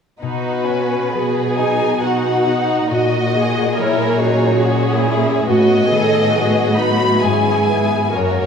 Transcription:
0.22 2.86 B2 soft
0.22 2.94 B2 soft
0.22 0.65 D#4 soft
0.22 1.10 F#4 soft
0.22 1.54 B4 soft
0.68 2.94 B3 soft
0.68 1.14 C#4 soft
1.14 3.77 F#3 soft
1.14 1.58 B3 soft
1.14 2.01 G#4 soft
1.14 1.99 G#4 soft
1.57 2.00 D#4 soft
1.57 2.45 D#4 soft
1.57 2.02 G#5 soft
2.01 2.88 D#4 soft
2.01 2.89 F#4 soft
2.01 4.62 F#4 soft
2.01 2.47 F#4 soft
2.01 2.90 F#5 soft
2.46 2.94 D#4 soft
2.46 2.91 D#4 soft
2.89 5.44 A#2 soft
2.89 5.52 A#2 soft
2.89 3.34 F#4 soft
2.89 3.76 F#4 soft
2.89 3.76 D#5 medium
3.35 5.52 A#3 soft
3.35 3.78 G#4 soft
3.77 6.34 F#3 soft
3.77 4.20 E4 soft
3.77 4.61 G#4 soft
3.77 4.20 A#4 soft
3.77 5.06 C#5 medium
4.20 5.04 C#4 soft
4.20 4.63 D#4 soft
4.20 4.62 F#4 soft
4.62 5.47 C#4 soft
4.62 5.06 F#4 soft
4.62 7.27 F#4 soft
4.62 5.48 G#4 medium
5.05 5.52 C#4 soft
5.05 5.48 E4 soft
5.47 7.20 A2 soft
5.47 7.27 A2 soft
5.47 6.33 B3 soft
5.47 5.91 F#4 soft
5.47 5.90 F#4 soft
5.47 6.74 D#5 medium
5.90 7.27 D#3 soft
5.90 6.34 G#4 soft
5.90 6.34 A4 soft
6.33 7.27 F#3 soft
6.33 7.22 B3 soft
6.33 6.78 F#4 soft
6.33 6.78 G#4 soft
6.77 7.70 B3 soft
6.77 7.23 D#4 soft
6.77 7.22 F#4 medium
6.77 7.23 B5 medium
7.22 8.15 G#2 soft
7.22 8.19 G#2 soft
7.22 7.69 C#4 soft
7.22 8.15 E4 soft
7.22 8.15 G#4 soft
7.22 8.15 G#5 medium
7.69 8.14 B3 soft
7.69 8.20 B3 soft
7.69 8.20 E4 soft
8.15 8.46 F#2 soft
8.15 8.46 A#3 soft
8.15 8.46 F#4 soft
8.15 8.46 A#4 soft
8.15 8.46 C#5 soft

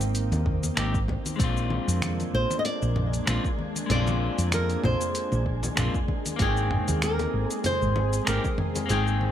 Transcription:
0.00 0.33 G#1 medium
0.00 1.36 D#3 medium
0.00 0.41 A#3 loud
0.00 1.37 A#3 medium
0.00 0.42 C4 medium
0.00 1.36 C4 medium
0.00 0.43 D#4 medium
0.00 0.45 G4 loud
0.00 1.05 G5 medium
0.00 closed hi-hat soft
0.00 muted conga medium
0.00 shaker medium
0.15 closed hi-hat medium
0.15 shaker medium
0.32 0.68 D#2 loud
0.32 closed hi-hat soft
0.32 muted conga medium
0.32 shaker soft
0.46 kick medium
0.46 mid tom medium
0.63 closed hi-hat soft
0.63 high conga medium
0.63 shaker medium
0.75 1.15 G#1 loud
0.75 0.96 A#3 medium
0.75 0.97 C4 medium
0.75 0.98 D#4 medium
0.75 0.98 G4 medium
0.75 finger snap loud
0.75 closed hi-hat medium
0.75 muted conga soft
0.75 shaker medium
0.94 kick loud
0.94 shaker soft
1.08 kick medium
1.08 muted conga medium
1.26 closed hi-hat soft
1.26 high conga medium
1.26 shaker medium
1.36 1.77 A#1 medium
1.36 2.91 G#3 medium
1.36 9.32 G#3 medium
1.36 6.35 A#3 medium
1.36 2.92 C4 medium
1.36 6.35 D4 medium
1.36 kick loud
1.36 closed hi-hat medium
1.36 muted conga soft
1.40 9.32 G#3 medium
1.40 2.93 D4 medium
1.40 2.95 F4 loud
1.40 9.32 G#5 medium
1.40 shaker medium
1.57 shaker soft
1.70 muted conga medium
1.88 2.25 F2 medium
1.88 closed hi-hat soft
1.88 shaker medium
2.02 finger snap loud
2.02 closed hi-hat medium
2.02 mid tom medium
2.02 high conga medium
2.02 shaker medium
2.20 closed hi-hat soft
2.20 muted conga medium
2.20 shaker soft
2.33 2.44 A#1 medium
2.33 2.59 C5 loud
2.50 closed hi-hat soft
2.50 muted conga medium
2.50 shaker medium
2.59 2.65 D#5 medium
2.65 3.90 D5 loud
2.65 closed hi-hat medium
2.65 shaker medium
2.82 3.19 A#1 loud
2.82 shaker soft
2.96 mid tom medium
2.96 muted conga medium
3.13 closed hi-hat soft
3.13 shaker medium
3.26 3.38 A#1 medium
3.26 3.46 G#3 medium
3.26 3.47 C4 medium
3.26 3.48 D4 medium
3.26 3.48 F4 medium
3.26 finger snap loud
3.26 closed hi-hat medium
3.26 muted conga medium
3.26 shaker medium
3.44 kick loud
3.44 shaker soft
3.59 high conga medium
3.76 closed hi-hat soft
3.76 muted conga soft
3.76 shaker medium
3.86 4.28 A#1 loud
3.86 5.41 G#3 medium
3.86 5.42 C4 medium
3.86 closed hi-hat medium
3.86 mid tom medium
3.86 shaker medium
3.91 5.43 D4 medium
3.91 5.45 F4 loud
3.91 4.53 D5 loud
4.07 muted conga medium
4.07 shaker soft
4.38 4.75 F2 loud
4.38 closed hi-hat soft
4.38 shaker medium
4.52 4.84 A#4 medium
4.52 finger snap loud
4.52 closed hi-hat medium
4.52 muted conga medium
4.52 high conga medium
4.52 shaker medium
4.70 closed hi-hat soft
4.70 shaker soft
4.84 4.94 A#1 medium
4.84 5.43 C5 medium
4.84 mid tom medium
4.84 muted conga medium
5.01 closed hi-hat soft
5.01 shaker medium
5.15 closed hi-hat medium
5.15 shaker medium
5.32 5.69 A#1 medium
5.32 muted conga medium
5.32 shaker soft
5.46 kick medium
5.63 closed hi-hat soft
5.63 muted conga medium
5.63 high conga medium
5.63 shaker medium
5.76 5.88 A#1 loud
5.76 5.96 G#3 medium
5.76 5.97 C4 medium
5.76 5.98 D4 medium
5.76 5.98 F4 medium
5.76 finger snap loud
5.76 closed hi-hat medium
5.76 mid tom medium
5.76 shaker medium
5.94 kick loud
5.94 shaker soft
6.08 kick medium
6.08 muted conga medium
6.26 closed hi-hat soft
6.26 high conga medium
6.26 shaker medium
6.36 6.77 G#1 loud
6.36 7.91 A#3 loud
6.36 7.92 C4 medium
6.36 9.32 C4 medium
6.36 9.32 G#4 medium
6.36 kick loud
6.36 closed hi-hat medium
6.36 muted conga medium
6.36 shaker medium
6.41 7.93 D#4 medium
6.41 7.03 G#4 medium
6.41 7.95 G5 loud
6.57 shaker soft
6.71 mid tom medium
6.88 7.25 D#2 medium
6.88 closed hi-hat soft
6.88 muted conga medium
6.88 shaker medium
7.02 7.53 A#4 medium
7.02 finger snap loud
7.02 closed hi-hat medium
7.02 high conga medium
7.02 shaker medium
7.19 closed hi-hat soft
7.19 muted conga medium
7.19 shaker soft
7.33 7.44 G#1 medium
7.51 7.66 G#4 medium
7.51 closed hi-hat soft
7.51 shaker medium
7.64 8.28 C5 loud
7.64 closed hi-hat medium
7.64 mid tom medium
7.64 muted conga soft
7.64 shaker medium
7.82 8.19 G#1 medium
7.82 shaker soft
7.96 muted conga medium
8.13 closed hi-hat soft
8.13 shaker medium
8.25 8.38 G#1 medium
8.25 8.46 A#3 medium
8.25 8.47 C4 medium
8.25 8.47 D#4 medium
8.25 8.90 A#4 loud
8.25 finger snap loud
8.25 closed hi-hat medium
8.25 shaker medium
8.29 8.48 G4 medium
8.44 kick loud
8.44 muted conga medium
8.44 shaker soft
8.58 mid tom medium
8.58 high conga medium
8.76 closed hi-hat medium
8.76 muted conga medium
8.76 shaker medium
8.86 9.27 G#1 medium
8.86 9.32 A#3 medium
8.86 9.32 C4 medium
8.86 closed hi-hat medium
8.86 shaker medium
8.90 9.32 D#4 medium
8.90 9.32 G#4 medium
8.90 9.32 G5 loud
9.07 shaker soft
9.21 muted conga medium

